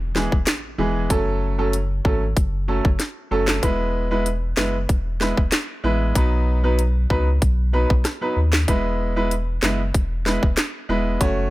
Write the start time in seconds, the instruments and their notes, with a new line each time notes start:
Already playing: sub bass E1, impact
0.15 grand piano E3 G#3 B3 G#4, snare
0.32 sub bass E1, kick
0.47 snare, clap, closed hi-hat
0.78 sub bass E1, grand piano E3 G#3 B3 G#4
1.10 sub bass F#1, grand piano F#3 A3 C#4 A4, kick, closed hi-hat
1.58 grand piano F#3 A3 C#4 A4
1.73 closed hi-hat
2.05 sub bass G#1, grand piano F#3 A3 C#4 A4, kick
2.37 sub bass F#1, kick, closed hi-hat
2.68 grand piano F#3 A3 C#4 A4
2.85 sub bass F#1, kick
3.00 snare, closed hi-hat
3.31 sub bass F#1, grand piano F#3 A3 C#4 A4
3.48 snare, clap
3.63 sub bass E1, grand piano G#3 B3 E4 B4, kick, closed hi-hat
4.11 grand piano G#3 B3 E4 B4
4.26 closed hi-hat
4.57 sub bass F#1, grand piano G#3 B3 E4 B4, snare, clap
4.89 sub bass E1, kick, closed hi-hat
5.20 grand piano G#3 B3 E4 B4, snare
5.37 sub bass E1, kick
5.52 snare, clap, closed hi-hat
5.84 sub bass A1, grand piano G#3 B3 E4 B4
6.15 sub bass B1, grand piano F#3 B3 D#4 B4, kick, closed hi-hat
6.64 grand piano F#3 B3 D#4 B4
6.79 closed hi-hat
7.10 sub bass C#2, grand piano F#3 B3 D#4 B4, kick
7.42 sub bass B1, kick, closed hi-hat
7.73 grand piano F#3 B3 D#4 B4
7.90 sub bass B1, kick
8.05 cross-stick, snare, closed hi-hat
8.21 grand piano F#3 B3 D#4 B4
8.37 sub bass D#2
8.53 snare, clap
8.68 sub bass E1, grand piano G#3 B3 E4 B4, kick, closed hi-hat
9.16 grand piano G#3 B3 E4 B4
9.31 closed hi-hat
9.62 sub bass F#1, grand piano G#3 B3 E4 B4, snare, clap
9.94 sub bass E1, kick, closed hi-hat
10.26 grand piano G#3 B3 E4 B4, snare
10.43 sub bass E1, kick
10.57 snare, clap, closed hi-hat
10.89 sub bass E1, grand piano G#3 B3 E4 B4
11.21 sub bass F#1, grand piano A3 C#4 F#4 C#5, kick, closed hi-hat